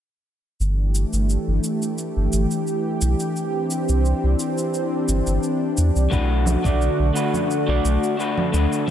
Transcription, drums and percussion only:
0.61 shaker soft
0.95 shaker medium
1.13 shaker soft
1.30 shaker soft
1.64 shaker medium
1.82 shaker soft
1.98 shaker soft
2.33 shaker medium
2.51 shaker soft
2.67 shaker soft
3.01 shaker medium
3.20 shaker soft
3.36 shaker soft
3.70 shaker medium
3.89 shaker soft
4.05 shaker soft
4.39 shaker medium
4.58 shaker soft
4.74 shaker soft
5.09 shaker medium
5.27 shaker soft
5.43 shaker soft
5.77 shaker medium
5.96 shaker soft
6.12 kick loud
6.12 shaker soft
6.46 high conga medium
6.46 shaker medium
6.64 kick loud
6.64 shaker soft
6.82 shaker soft
7.16 shaker medium
7.34 high conga medium
7.34 shaker soft
7.51 shaker soft
7.85 shaker medium
8.04 shaker soft
8.20 shaker soft
8.37 high conga medium
8.54 shaker medium
8.73 shaker soft

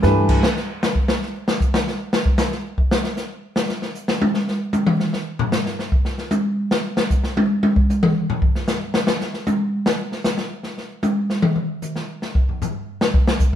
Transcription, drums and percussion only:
0.03 snare medium
0.03 hi-hat pedal soft
0.29 kick medium
0.29 crash medium
0.43 snare loud
0.57 snare soft
0.83 snare medium
0.83 hi-hat pedal medium
0.95 kick medium
1.08 snare loud
1.22 snare soft
1.48 snare loud
1.60 kick medium
1.60 hi-hat pedal soft
1.74 snare loud
1.87 snare medium
2.13 snare loud
2.26 kick medium
2.38 snare medium
2.38 hi-hat pedal medium
2.52 snare soft
2.78 kick medium
2.91 snare loud
3.04 snare medium
3.17 snare soft
3.17 hi-hat pedal soft
3.56 snare loud
3.69 snare medium
3.82 snare soft
3.95 hi-hat pedal soft
4.08 snare medium
4.22 high tom loud
4.34 snare soft
4.48 snare soft
4.73 hi-hat pedal medium
4.73 high tom medium
4.87 mid tom loud
5.00 snare soft
5.13 snare medium
5.39 floor tom loud
5.52 snare loud
5.52 hi-hat pedal medium
5.66 snare soft
5.79 snare soft
5.92 kick medium
6.05 snare soft
6.18 snare soft
6.31 hi-hat pedal soft
6.31 high tom medium
6.71 snare loud
6.97 snare loud
7.10 kick medium
7.10 hi-hat pedal medium
7.24 snare medium
7.37 high tom loud
7.63 high tom loud
7.76 kick medium
7.90 hi-hat pedal medium
7.90 high tom soft
8.03 mid tom loud
8.30 floor tom loud
8.42 kick medium
8.55 snare soft
8.68 snare medium
8.68 hi-hat pedal medium
8.94 snare loud
9.07 snare loud
9.21 snare soft
9.34 snare soft
9.47 hi-hat pedal soft
9.47 high tom medium
9.86 snare loud
10.12 snare soft
10.24 snare loud
10.24 hi-hat pedal medium
10.38 snare medium
10.63 snare soft
10.78 snare soft
11.03 hi-hat pedal soft
11.03 high tom medium
11.30 snare soft
11.42 mid tom loud
11.56 mid tom medium
11.82 hi-hat pedal medium
11.82 mid tom soft
11.96 snare soft
12.22 snare medium
12.35 kick medium
12.49 floor tom soft
12.62 floor tom medium
12.62 hi-hat pedal soft
13.01 snare loud
13.14 kick medium
13.28 snare loud
13.40 kick medium
13.40 hi-hat pedal medium

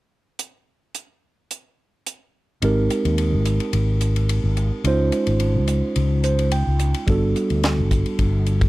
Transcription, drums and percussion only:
0.39 closed hi-hat soft
0.95 closed hi-hat soft
1.51 closed hi-hat soft
2.06 closed hi-hat soft
2.62 ride medium
2.90 hi-hat pedal medium
2.90 ride soft
3.05 ride soft
3.18 ride medium
3.45 hi-hat pedal medium
3.45 ride soft
3.60 ride soft
3.73 ride medium
4.01 hi-hat pedal medium
4.01 ride medium
4.16 ride soft
4.29 ride medium
4.57 hi-hat pedal medium
4.57 ride soft
4.85 ride medium
5.12 hi-hat pedal medium
5.12 ride soft
5.27 ride soft
5.40 ride medium
5.68 hi-hat pedal medium
5.68 ride soft
5.96 ride medium
6.24 hi-hat pedal medium
6.24 ride soft
6.39 ride soft
6.51 ride medium
6.79 hi-hat pedal medium
6.79 ride soft
6.94 ride soft
7.08 kick medium
7.08 ride medium
7.36 hi-hat pedal medium
7.36 ride soft
7.50 ride soft
7.63 snare medium
7.63 ride medium
7.91 kick medium
7.91 hi-hat pedal medium
7.91 ride soft
8.06 ride soft
8.19 kick medium
8.19 ride medium
8.46 hi-hat pedal medium
8.46 ride soft
8.61 kick medium
8.61 ride soft

